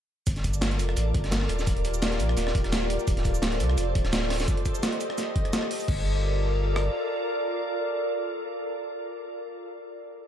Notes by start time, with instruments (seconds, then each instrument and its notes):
0.27 sub bass G1, ambient pad F4 A4 A#4 D5, kick, closed hi-hat, shaker
0.36 snare, closed hi-hat
0.44 kick, closed hi-hat, shaker
0.54 shaker
0.61 snare, closed hi-hat, shaker
0.71 snare, closed hi-hat
0.79 sub bass F1, closed hi-hat, shaker
0.89 cross-stick
0.96 sub bass A1, closed hi-hat, shaker
1.14 sub bass G1, kick, closed hi-hat
1.24 cross-stick, snare, closed hi-hat
1.31 snare, closed hi-hat, shaker
1.41 cross-stick, snare
1.49 sub bass D#1, ambient pad G4, cross-stick, closed hi-hat
1.59 snare, shaker
1.67 kick, closed hi-hat, shaker
1.77 closed hi-hat
1.85 closed hi-hat, shaker
1.94 shaker
2.02 snare, closed hi-hat, shaker
2.12 snare, closed hi-hat
2.19 sub bass A#1, closed hi-hat, shaker
2.29 cross-stick
2.37 sub bass D#1, snare, closed hi-hat, shaker
2.47 cross-stick, snare
2.55 sub bass D#1, kick, closed hi-hat
2.64 cross-stick, snare, closed hi-hat
2.72 snare, closed hi-hat, shaker
2.82 cross-stick
2.90 closed hi-hat
3.00 shaker
3.07 sub bass D1, ambient pad A4 C5, kick, closed hi-hat, shaker
3.17 snare, closed hi-hat
3.25 kick, closed hi-hat, shaker
3.35 shaker
3.42 snare, closed hi-hat, shaker
3.52 snare, closed hi-hat
3.60 sub bass C2, closed hi-hat, shaker
3.70 cross-stick
3.78 sub bass F1, closed hi-hat, shaker
3.95 sub bass D1, kick, closed hi-hat
4.04 cross-stick, snare, closed hi-hat
4.13 snare, closed hi-hat, shaker
4.22 cross-stick, snare
4.30 cross-stick, snare, closed hi-hat, open hi-hat
4.40 snare, closed hi-hat, shaker
4.48 ambient pad G4 D#5, kick, closed hi-hat, shaker
4.57 closed hi-hat
4.66 kick, closed hi-hat, shaker
4.75 shaker
4.83 snare, closed hi-hat, shaker
4.92 closed hi-hat
5.01 closed hi-hat, shaker
5.10 cross-stick
5.18 snare, closed hi-hat, shaker
5.36 kick, closed hi-hat
5.45 cross-stick, closed hi-hat
5.53 snare, closed hi-hat, shaker
5.63 cross-stick
5.71 open hi-hat
5.80 shaker
5.88 sub bass G1, ambient pad F4 A4 A#4 D5, kick, crash
6.76 cross-stick